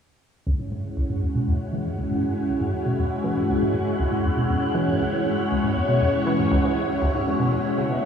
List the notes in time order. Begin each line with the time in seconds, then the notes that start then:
0.47 C#2 G#3 C#4 E4 F#4 C#5 F#5
0.59 G#2
0.72 G#2
0.97 C#2
1.10 G#2
1.22 E2
1.35 B2
1.48 E2
1.73 E3
1.85 G#2
1.98 C#2
2.11 G#2
2.23 G#2
2.49 C#2
2.61 G#2
2.73 E2
2.86 B2
2.99 E2
3.24 E3
3.37 G#2
3.49 C#2
3.62 G#2
3.74 G#2
3.99 C#2
4.12 G#2
4.24 E2
4.37 B2
4.50 E2
4.75 E3
4.88 G#2
5.00 C#2
5.13 G#2
5.25 G#2
5.51 C#2
5.63 G#2
5.76 E2
5.88 B2
6.01 E2
6.27 E3
6.39 G#2
6.51 C#2
6.64 G#2
6.77 G#2
7.02 C#2
7.15 G#2
7.27 E2
7.40 B2
7.52 E2
7.78 C#3
7.90 B2